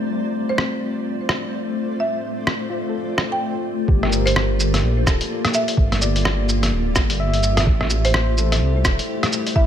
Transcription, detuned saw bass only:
3.88 G1
4.83 A#1
5.07 D1
5.77 G1
6.72 D1
6.96 G1
7.67 A1
8.61 C2
8.85 E1
9.56 A1

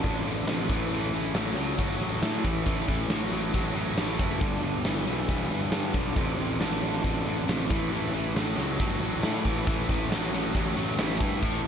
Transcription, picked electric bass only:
0.04 A1
0.25 A1
0.48 A1
0.70 A1
0.91 A1
1.13 A1
1.34 A1
1.56 C#2
1.79 G1
2.00 A1
2.22 A2
2.44 A1
2.67 A1
2.89 A1
3.10 A1
3.32 A1
3.54 A1
3.76 A1
3.97 A1
4.20 F#1
4.41 G1
4.63 G1
4.85 G1
5.07 B1
5.29 E1
5.51 G1
5.73 G2
5.94 B1
6.17 A1
6.38 A1
6.60 A1
6.82 A1
7.04 A1
7.26 A1
7.48 A1
7.71 A1
7.92 A1
8.13 A1
8.35 A1
8.57 C#2
8.80 G1
9.02 A1
9.24 A2
9.45 A1
9.67 A1
9.89 A1
10.12 A1
10.33 A1
10.55 A1
10.77 A1
10.99 A1
11.21 G2
11.43 A1
11.64 A1

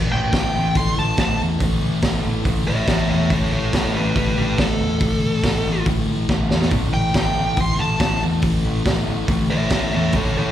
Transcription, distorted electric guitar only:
Already playing: A2 E3 A3
0.31 A2 E3
0.36 A3
0.74 A2 E3
0.79 A3
0.97 E3 A3
1.17 A2 E3
1.21 A3
1.38 A3
1.43 E3
1.59 A2 E3
1.64 A3
2.02 A2 E3 A3
2.45 A2 E3
2.49 A3
2.66 A3
2.70 E3
2.88 A2 E3
2.92 A3
3.07 A3
3.12 E3
3.29 A2 E3
3.33 A3
3.72 A2 E3
3.76 A3
4.13 A2 E3
4.18 A3
4.35 E3 A3
4.58 A2 E3 A3
4.79 E3 A3
5.00 A2 E3
5.05 A3
5.43 A2 E3
5.48 A3
5.86 A2 E3 A3
6.08 E3 A3
6.29 A2 E3 A3
6.50 E3 A3
6.72 A2 E3
6.77 A3
7.15 A2 E3
7.19 A3
7.57 A2 E3
7.61 A3
7.79 A3
7.83 E3
8.00 A2 E3
8.04 A3
8.20 A3
8.24 E3
8.42 A2 E3
8.47 A3
8.84 A2 E3
8.89 A3
9.28 A2 E3
9.32 A3
9.50 A3
9.54 E3
9.71 A2 E3
9.75 A3
9.92 A3
9.96 E3
10.12 A2 E3
10.17 A3

